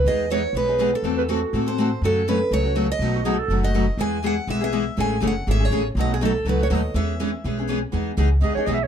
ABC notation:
X:1
M:4/4
L:1/16
Q:"Swing" 1/4=244
K:E
V:1 name="Steel-string acoustic guitar"
d4 c4 B6 A2- | A4 z6 =c6 | A4 B4 c6 d2- | d4 z6 d6 |
g4 f4 e2 e6 | g4 f4 e2 c4 z2 | d2 G2 A4 B2 c2 d4 | e12 z4 |
z16 |]
V:2 name="Clarinet"
z16 | z2 B2 F4- F z6 z | z16 | z2 F2 G2 A3 z6 z |
z16 | z16 | z16 | z16 |
z8 d2 c2 (3d2 e2 c2 |]
V:3 name="Steel-string acoustic guitar"
[E,G,B,DG]2 z2 [E,G,B,DG]2 z2 [E,G,B,DG]2 z2 [E,G,B,DG]2 z2 | [E,A,=CFA]2 z2 [E,A,CFA]2 z2 [E,A,CFA]2 z2 [E,A,CFA]2 z2 | [F,CFA]2 z2 [F,CFA]2 z2 [F,CFA]2 z2 [F,CFA]2 z2 | [B,,F,A,DFB]2 z2 [B,,F,A,DFB]2 z2 [B,,F,A,DFB]2 z2 [B,,F,A,DFB]2 z2 |
[E,G,B,EG]2 z2 [E,G,B,EG]2 z2 [E,G,B,EG]2 z2 [E,G,B,EG]2 z2 | [E,G,CEA]2 z2 [E,G,CEA]2 z2 [E,G,CEA]2 z2 [E,G,CEA]2 z2 | [B,,F,A,DFB]2 z2 [B,,F,A,DFB]2 z2 [B,,F,A,DFB]2 z2 [B,,F,A,DFB]2 z2 | [E,G,CGc]2 z2 [E,G,CGc]2 z2 [E,G,CGc]2 z2 [E,G,CGc]2 z2 |
[E,G,B,DG]2 z2 [E,G,B,DG]2 z2 [E,G,B,DG]2 z2 [E,G,B,DG]2 z2 |]
V:4 name="Steel-string acoustic guitar"
[E,B,DG]2 z2 [E,B,DG]2 z2 [E,B,DG]2 [B,DG]2 [E,B,DG]2 z2 | [E,A,=CFA]2 z2 [E,A,CFA]2 z2 [E,A,CFA]2 [CFA]2 [E,A,CFA]2 z2 | [C,F,A,CF]2 z2 [C,F,A,CF]2 z2 [C,F,A,CF]2 [A,CF]2 [C,F,A,CF]2 z2 | [B,,F,A,DF]2 z2 [B,,F,A,DF]2 z2 [B,,F,A,DF]2 [A,DF]2 [B,,F,A,DF]2 z2 |
[E,G,B,EG]2 z2 [E,G,B,EG]2 z2 [E,G,B,EG]2 [B,EG]2 [E,G,B,EG]2 z2 | [C,E,A,CG]2 z2 [C,E,A,CG]2 z2 [C,E,A,CG]2 [A,CG]2 [C,E,A,CG]2 z2 | [B,,F,A,DF]2 z2 [B,,F,A,DF]2 z2 [B,,F,A,DF]2 [A,DF]2 [B,,F,A,DF]2 z2 | [E,B,CG]2 z2 [E,B,CG]2 z2 [E,B,CG]2 [B,CG]2 [E,B,CG]2 z2 |
[E,B,DG]2 z2 [E,B,DG]2 z2 [E,B,DG]2 [B,DG]2 [E,B,DG]2 z2 |]
V:5 name="Upright bass" clef=bass
E,,8 B,,,8 | E,,8 A,,8 | F,,8 C,,8 | B,,,8 F,,,8 |
E,,8 B,,,8 | A,,,4 F,,,4 G,,,4 A,,,4 | B,,,8 C,,4 D,,4 | E,,8 B,,,8 |
E,,4 C,,4 D,,2 z2 B,,,4 |]